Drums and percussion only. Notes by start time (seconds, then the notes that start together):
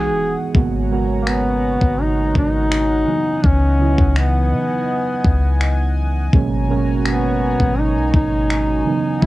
0.55 kick
1.27 finger snap
1.81 kick
2.35 kick
2.72 finger snap
3.44 kick
3.98 kick
4.16 finger snap
5.24 kick
5.61 finger snap
6.33 kick
7.06 finger snap
7.60 kick
8.14 kick
8.50 finger snap
9.22 kick